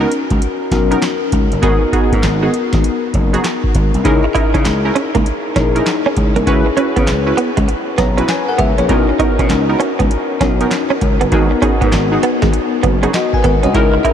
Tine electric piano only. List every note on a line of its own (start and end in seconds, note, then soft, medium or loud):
0.00 0.68 C#4 medium
0.00 0.68 D#4 medium
0.00 0.69 F#4 medium
0.00 0.69 A#4 medium
0.71 1.62 C#4 medium
0.71 1.61 D#4 medium
0.71 1.62 F#4 soft
0.71 1.63 A#4 medium
1.62 4.00 B3 medium
1.62 4.01 D#4 medium
1.62 4.01 F#4 medium
1.62 4.02 A#4 medium
4.04 5.53 D#4 medium
4.04 5.53 E4 medium
4.04 5.54 G#4 medium
4.04 5.54 A#4 medium
5.56 6.47 D#4 medium
5.56 6.46 E4 soft
5.56 6.46 G#4 soft
5.56 6.48 A#4 medium
6.46 8.55 C#4 medium
6.46 7.96 E4 medium
6.46 7.96 G#4 medium
6.46 7.96 B4 medium
7.99 8.28 C#5 medium
7.99 8.28 A#5 medium
8.29 8.48 B4 medium
8.29 8.47 G#5 medium
8.48 8.59 A#4 medium
8.48 8.59 F#5 medium
8.59 8.78 G#4 medium
8.59 8.78 E5 medium
8.79 9.08 E4 medium
8.79 9.08 C#5 medium
8.88 10.38 C#4 medium
8.88 10.38 D#4 medium
8.88 10.38 F#4 medium
8.88 10.39 A#4 medium
10.41 11.32 C#4 medium
10.41 11.31 D#4 medium
10.41 11.31 F#4 medium
10.41 11.33 A#4 medium
11.31 13.10 B3 medium
11.31 13.10 D#4 medium
11.31 13.11 F#4 medium
11.31 13.11 A#4 medium
13.15 13.33 F#4 medium
13.15 13.33 D#5 medium
13.34 13.44 B4 medium
13.34 13.44 G#5 medium
13.45 13.63 A#4 medium
13.45 13.63 F#5 medium
13.64 13.93 F#4 medium
13.64 13.93 D#5 medium
13.73 14.13 D#4 medium
13.73 14.13 E4 medium
13.73 14.13 G#4 medium
13.73 14.13 A#4 medium